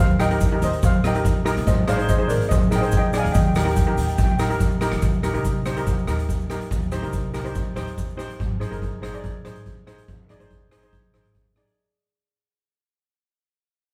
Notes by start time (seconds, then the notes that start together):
0.00 D#2 C5 F5
0.10 shaker
0.19 D#4 G4 A#4 D#5 G5, cross-stick, closed hi-hat, shaker
0.31 D#4 G4 A#4, closed hi-hat
0.40 kick, closed hi-hat, shaker
0.52 D#4 G4 A#4
0.62 D#2 C5 D#5, closed hi-hat, shaker
0.73 closed hi-hat, shaker
0.83 C5 F5, kick, closed hi-hat, shaker
0.93 shaker
1.04 D#4 G4 A#4 D#5 G5, cross-stick, closed hi-hat, shaker
1.15 D#4 G4 A#4, closed hi-hat, shaker
1.24 kick, closed hi-hat, shaker
1.45 D#4 G4 A#4, cross-stick, closed hi-hat, shaker
1.57 A#1, closed hi-hat
1.67 G#1 C5 D#5, kick, closed hi-hat, shaker
1.87 D#4 G#4 C5 D5 F5, cross-stick, closed hi-hat, shaker
1.97 D#4 G#4 C5, closed hi-hat
2.09 C5 D#5, kick, closed hi-hat, shaker
2.18 D#4 G#4 C5
2.28 G#1 A#4 D5, closed hi-hat, shaker
2.41 closed hi-hat, shaker
2.49 C5 D#5, kick, closed hi-hat, shaker
2.62 shaker
2.71 D#4 G#4 A#4, cross-stick, closed hi-hat, shaker
2.76 D#5 G5
2.81 D#4 G#4 C5, closed hi-hat, shaker
2.91 kick, closed hi-hat, shaker
2.97 D#5 G5
3.13 D#4 G#4 D5, cross-stick, closed hi-hat, shaker
3.18 F5 G#5
3.24 D#2, closed hi-hat
3.32 D#2 D#5 G5, kick, closed hi-hat, shaker
3.39 G5
3.47 G5
3.55 D#4 G4 A#4 G5, cross-stick, closed hi-hat, shaker
3.62 D#4 G4 A#4 G5, shaker
3.67 G5, closed hi-hat
3.76 G5, kick, closed hi-hat, shaker
3.85 D#4 G4 A#4 G5
3.93 G5
3.97 D#2 G5, closed hi-hat, shaker
4.07 G5, closed hi-hat, shaker
4.16 G5, kick, closed hi-hat, shaker
4.24 G5
4.29 G5, shaker
4.38 D#4 G4 A#4 G5, cross-stick, closed hi-hat, shaker
4.50 D#4 G4 A#4, closed hi-hat, shaker
4.60 kick, closed hi-hat, shaker
4.71 shaker
4.81 D#4 G4 A#4, cross-stick, closed hi-hat, shaker
4.92 A#1, cross-stick, closed hi-hat, shaker
5.02 D#2, kick, closed hi-hat, shaker
5.23 D#4 G4 A#4, cross-stick, closed hi-hat, shaker
5.34 C2 D#4 G4 A#4, closed hi-hat
5.45 kick, closed hi-hat, shaker
5.66 D#4 G4 C5, cross-stick, closed hi-hat, shaker
5.77 D#4 G4 A#4, closed hi-hat, shaker
5.87 kick, closed hi-hat, shaker
5.98 shaker
6.07 D#2 D#4 G4 A#4, cross-stick, closed hi-hat, shaker
6.19 closed hi-hat, shaker
6.29 kick, closed hi-hat, shaker
6.41 shaker
6.50 D#4 G4 A#4, cross-stick, closed hi-hat, shaker
6.61 closed hi-hat
6.71 D#2, kick, closed hi-hat, shaker
6.83 shaker
6.92 D#4 G4 C5, cross-stick, closed hi-hat, shaker
7.02 C2 D#4 G4 A#4, closed hi-hat
7.13 kick, closed hi-hat, shaker
7.34 D#4 G4 A#4, cross-stick, closed hi-hat, shaker
7.44 D#4 G4 C5, closed hi-hat, shaker
7.55 kick, closed hi-hat, shaker
7.76 D#2 D#4 G4 C5, cross-stick, closed hi-hat, shaker
7.87 closed hi-hat, shaker
7.98 kick, closed hi-hat, shaker
8.10 shaker
8.17 D#4 G4 C5, cross-stick, closed hi-hat, shaker
8.30 closed hi-hat
8.40 G#1, kick, closed hi-hat
8.60 D#4 G#4 C5, cross-stick, closed hi-hat
8.71 G1 D#4 G#4 A#4, closed hi-hat
8.82 kick, closed hi-hat
9.02 D#4 G#4 C5, cross-stick, closed hi-hat
9.13 D#4 G#4 D5, closed hi-hat
9.23 kick, closed hi-hat
9.45 G#1 D#4 G#4 C5, cross-stick, closed hi-hat
9.55 closed hi-hat
9.66 kick, closed hi-hat
9.87 D#4 G#4 C5, cross-stick, closed hi-hat
9.98 closed hi-hat
10.08 G#1, kick, closed hi-hat
10.29 D#4 G#4 D5, cross-stick, closed hi-hat
10.40 G1 D#4 G#4 C5, closed hi-hat
10.50 kick, closed hi-hat
10.71 D#4 G#4 C5, cross-stick, closed hi-hat
10.82 D#4 G#4 C5, closed hi-hat
10.93 kick, closed hi-hat
11.14 G#1 D#4 G#4 C5, cross-stick, closed hi-hat
11.25 closed hi-hat
11.35 kick, closed hi-hat
11.56 D#4 G#4 D5, cross-stick, closed hi-hat
11.67 closed hi-hat